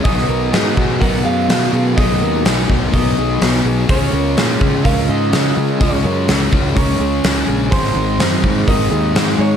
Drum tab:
HH |o---o---o---o---|o---o---o---o---|o---o---o---o---|o---o---o---o---|
SD |-o--o-------oo--|----o-------oo--|----o-------o---|----o-------o---|
BD |o-----o-o-------|o-----o-o-------|o-----o-o-------|o-----o-o-------|

HH |o---o---o---o---|
SD |-o--o-------oo--|
BD |o-----o-o-------|